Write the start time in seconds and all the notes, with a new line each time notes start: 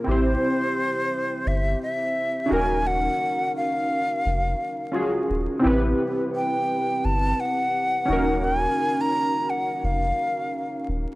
0.04 A1 C4 E4 C5
0.09 G4 C5
1.46 G1 E5
1.83 E5
2.46 C#4 D#4
2.50 D#1 F#4 A#4 G#5
2.87 F#5
3.57 F5
4.26 F1
4.92 C#4 F4 F#4 G#4
5.30 D#1
5.59 C4 E4
5.64 A1 G4 B4
6.35 G5
7.05 G1 A5
7.40 F#5
8.05 D#1 C#4 D#4
8.10 F#4 A#4
8.44 G#5
9.01 A#5
9.50 F#5
9.84 F1 F5
10.88 D#1